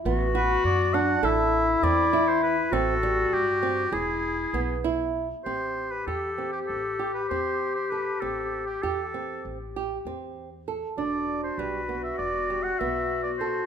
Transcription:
<<
  \new Staff \with { instrumentName = "Oboe" } { \time 9/8 \key a \dorian \tempo 4. = 66 r8 b'8 d''8 fis''8 e''4 d''8. c''16 b'8 | a'4 g'4 gis'4. r4 | c''8. b'16 a'8. g'16 a'8. b'16 c''8. c''16 b'8 | a'8. g'16 a'4 r2 r8 |
d''8. c''16 b'8. e''16 d''8. fis''16 e''8. d''16 c''8 | }
  \new Staff \with { instrumentName = "Clarinet" } { \time 9/8 \key a \dorian fis'2 e'2~ e'8 | fis'2 e'2 r8 | g'1~ g'8~ | g'1 r8 |
fis'1~ fis'8 | }
  \new Staff \with { instrumentName = "Nylon-string guitar" } { \time 9/8 \key a \dorian b8 fis'4 d'8 a'4 c'8 e'4 | c'8 g4 c'8 gis'4 b8 e'4 | c'4 g'8 c'4 g'8 c'4 a'8 | c'4 g'8 c'4 g'8 c'4 a'8 |
d'4 g8 b4 g8 b4 a'8 | }
  \new Staff \with { instrumentName = "Upright bass" } { \clef bass \time 9/8 \key a \dorian a,,4 fis,4 a,,4 e,4. | a,,4 g,4 e,,4 b,,4. | a,,4 e,4 a,,4 e,4. | a,,4 e,4 a,,4 e,4. |
e,,4 b,,4 e,,4 b,,4. | }
>>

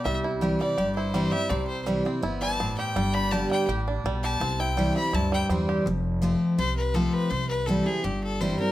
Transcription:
<<
  \new Staff \with { instrumentName = "Fiddle" } { \time 4/4 \key c \major \tempo 4 = 165 e''8 r4 d''4 c''4 e''8 | d''8 c''8 r4. a''4 g''8~ | g''8 b''8 a''8 g''8 r4. a''8~ | a''8 g''4 b''8 a''8 g''8 r4 |
r2 c''8 b'8 a'8 b'8 | c''8 b'8 a'8 aes'8 g'8 a'8 c''8 bes'8 | }
  \new Staff \with { instrumentName = "Five-string banjo" } { \time 4/4 \key c \major g8 e'8 g'8 g8 g'8 e'8 g8 g'8 | c'4 g8 c'8 e'8 g8 c'8 g'8 | g8 d'8 g'8 g8 g'8 d'8 g8 g'8 | c'8 e'8 g8 c'8 e'8 g8 c'8 g'8 |
r1 | r1 | }
  \new Staff \with { instrumentName = "Steel-string acoustic guitar" } { \time 4/4 \key c \major << { r4 <e g c' e'>8 <c' e'>8 r4 <e g c' e'>8 <c' e'>8 | r4 <e g c' e'>8 <c' e'>8 r2 | r4 <d g b g'>4 r2 | r4 <e g c' e'>8 <c' e'>8 r4 <e g c' e'>4 |
r4 <f a c' f'>4 r4 <f a c' f'>4 | r4 <e g c' e'>8 <c' e'>8 r4 <e g c' e'>8 <c' e'>8 | } \\ { c2 g,2 | c2 b4 a,4 | g,2 a,4 b,4 | c2 g,2 |
f,2 c2 | c2 g,2 | } >> }
  \new Staff \with { instrumentName = "Upright bass" } { \clef bass \time 4/4 \key c \major c,2 g,,2 | c,2 g,,2 | g,,2 a,,4 b,,4 | c,2 d,4 e,4 |
f,,2 c,2 | c,2 g,,2 | }
>>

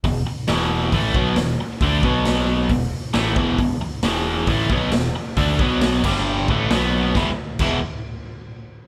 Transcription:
<<
  \new Staff \with { instrumentName = "Overdriven electric guitar" } { \clef bass \time 4/4 \key b \dorian \tempo 4 = 135 <e, b,>8 r8 <e, b, e>4 <a, e a>8 <b, fis b>8 <e, b,>8 r8 | <d a d'>8 <b, fis b>4. <e, b,>8 r8 <a, e a>8 <e, b, e>8 | <e, b,>8 r8 <e, b, e>4 <a, e a>8 <b, fis b>8 <e, b,>8 r8 | <d a d'>8 <b, fis b>4 <g, d g>4 <a, e a>8 <b, fis b>4 |
<e, b, e gis b e'>8 r8 <e, b, e gis b e'>8 r2 r8 | }
  \new Staff \with { instrumentName = "Picked electric bass" } { \clef bass \time 4/4 \key b \dorian e,,8 r8 e,,4 a,,8 b,,8 e,,8 r8 | d,8 b,,4. e,,8 r8 a,,8 e,,8 | e,,8 r8 e,,4 a,,8 b,,8 e,,8 r8 | d,8 b,,4 g,,4 a,,8 b,,4 |
e,,8 r8 e,,8 r2 r8 | }
  \new DrumStaff \with { instrumentName = "Drums" } \drummode { \time 4/4 <hho bd>4 <hho sn>4 <hho bd>8 bd8 <hho sn>4 | <hho bd>8 bd8 <hho sn>4 <hho bd>4 <hho sn>8 bd8 | <hho bd>4 <hho sn>4 <hho bd>8 bd8 <hho sn>4 | <hho bd>8 bd8 <hho sn>8 <cymc bd>8 r8 bd8 <hho sn>4 |
<bd sn>4 <cymc bd>4 r4 r4 | }
>>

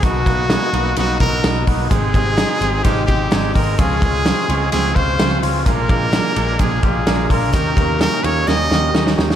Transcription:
<<
  \new Staff \with { instrumentName = "Trumpet" } { \time 4/4 \key ees \mixolydian \tempo 4 = 128 fis'2 fis'8 ais'4 r8 | aes'2 g'8 g'4 bes'8 | aes'2 aes'8 c''4 r8 | bes'2 aes'8 aes'4 bes'8 |
bes'4 bes'8 des''8 ees''4. r8 | }
  \new Staff \with { instrumentName = "Transistor combo organ" } { \time 4/4 \key ees \mixolydian <ais b dis' fis'>8 <ais b dis' fis'>8 <ais b dis' aes'>8 <ais b dis' fis'>8 <ais b dis' fis'>8 <ais b dis' fis'>8 <ais b dis' fis'>8 <ais b dis' fis'>8 | <aes c' ees' g'>8 <aes c' ees' g'>8 <aes c' ees' bes'>8 <aes c' ees' g'>8 <aes c' ees' f'>8 <aes c' ees' g'>8 <aes c' ees' aes'>8 <aes c' ees' bes'>8 | <c' des' f' aes'>8 <c' des' f' aes'>8 <c' des' f' aes'>8 <c' des' f' aes'>8 <c' des' f' aes'>8 <c' des' f' aes'>8 <c' des' f' aes'>8 <c' des' f' aes'>8 | <bes d' f' aes'>8 <bes d' f' aes'>8 <bes d' f' aes'>8 <bes d' f' aes'>8 <bes d' f' aes'>8 <bes d' f' g'>8 <bes d' f' bes'>8 <bes d' f' aes'>8 |
<bes des' ees' g'>8 <bes des' ees' bes'>8 <bes des' ees' g'>8 <bes des' ees' f'>8 <bes des' ees' g'>8 <bes des' ees' f'>8 <bes des' ees' g'>8 <bes des' ees' g'>8 | }
  \new Staff \with { instrumentName = "Clean electric guitar" } { \time 4/4 \key ees \mixolydian <b, fis'>8 ais8 des'16 dis'16 ais8 dis'8 fis'8 dis'8 fis'8 | aes8 c'8 ees'8 c'8 ees'8 g'8 ees'8 g'8 | <des f'>8 aes8 c'8 aes8 c'8 f'8 c'8 f'8 | <bes, f'>8 aes8 d'8 aes8 c'16 d'16 f'8 d'8 f'8 |
<ees g'>8 bes8 des'8 bes8 des'8 g'8 des'8 g'8 | }
  \new Staff \with { instrumentName = "Steel-string acoustic guitar" } { \time 4/4 \key ees \mixolydian r1 | <aes c' ees' g'>8 <c' ees' g'>8 <aes c' ees' g'>8 <c' ees' g'>8 <aes c' ees' g'>8 <c' ees' g'>8 <aes c' ees' g'>8 <c' ees' g'>8 | <des f aes c' f'>8 <aes c' f'>8 <f aes c' f'>8 <aes c' f'>8 <des f aes c' f'>8 <aes c' f'>8 <f aes c' f'>8 <aes c' f'>8 | <bes, f aes d' f'>8 <aes d' f'>8 <f aes d' f'>8 <aes d' f'>8 <bes, f aes d' f'>8 <aes d' f'>8 <f aes d' f'>8 <aes d' f'>8 |
<ees bes des' g'>8 <bes des' g'>8 <ees bes des' g'>8 <bes des' g'>8 <ees bes des' g'>8 <bes des' g'>8 <ees bes des' g'>8 <bes des' g'>8 | }
  \new Staff \with { instrumentName = "Picked electric bass" } { \clef bass \time 4/4 \key ees \mixolydian b,,8 b,,8. r16 b,,8 b,,8 b,,8 b,,8 b,,8 | aes,,8 aes,,8. r16 aes,,8 aes,,8 aes,,8 aes,,8 aes,,8 | des,8 des,8. r16 des,8 des,8 des,8 des,8 des,8 | bes,,8 bes,,8. r16 bes,,8 bes,,8 bes,,8 bes,,8 bes,,8 |
ees,8 ees,8. r16 ees,8 ees,8 ees,8 ees,8 ees,8 | }
  \new DrumStaff \with { instrumentName = "Drums" } \drummode { \time 4/4 <hhp bd cymr>8 <bd cymr>8 <cymr sn>8 cymr8 <cymr sn>8 <bd cymr>8 <cymr sn>8 <hho bd cymr>8 | <hhp bd cymr>8 <bd cymr>8 <cymr sn>8 cymr8 <bd cymr sn>8 <bd cymr>8 <cymr sn>8 <hho bd cymr>8 | <hhp bd cymr>8 <bd cymr>8 <cymr sn>8 cymr8 <cymr sn>8 <bd cymr>8 <cymr sn>8 <hho cymr>8 | <hhp bd cymr>8 <bd cymr>8 <cymr sn>8 cymr8 <bd cymr sn>8 <bd cymr>8 <cymr sn>8 <hho bd cymr>8 |
<hhp bd cymr>8 <bd cymr>8 <cymr sn>8 cymr8 sn8 sn8 sn16 sn16 sn16 sn16 | }
>>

